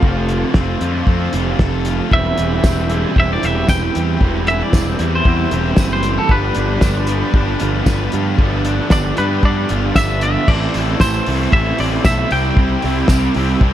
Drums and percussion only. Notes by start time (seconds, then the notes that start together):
0.03 kick
0.29 closed hi-hat
0.54 kick, snare
0.81 closed hi-hat
1.07 kick
1.33 closed hi-hat
1.59 kick, snare
1.85 closed hi-hat
2.12 kick
2.38 closed hi-hat
2.64 kick, snare, tambourine
2.90 closed hi-hat
3.16 kick
3.43 snare, closed hi-hat
3.69 kick, snare, tambourine
3.95 closed hi-hat
4.21 kick
4.47 closed hi-hat
4.73 kick, snare, tambourine
4.99 closed hi-hat
5.25 kick
5.51 closed hi-hat
5.77 kick, snare, tambourine
6.03 closed hi-hat
6.29 kick
6.55 closed hi-hat
6.81 kick, snare, tambourine
7.07 closed hi-hat
7.34 kick
7.60 closed hi-hat
7.86 kick, snare, tambourine
8.12 closed hi-hat
8.38 kick
8.65 closed hi-hat
8.90 kick, snare, tambourine
9.17 closed hi-hat
9.43 kick
9.69 closed hi-hat
9.96 kick, snare, tambourine
10.21 closed hi-hat
10.48 kick, crash
10.74 open hi-hat
11.00 kick, snare, tambourine
11.26 open hi-hat
11.53 kick
11.79 open hi-hat
12.05 kick, snare, tambourine
12.31 open hi-hat
12.57 kick
12.82 open hi-hat
13.08 kick, snare, tambourine
13.34 open hi-hat
13.61 kick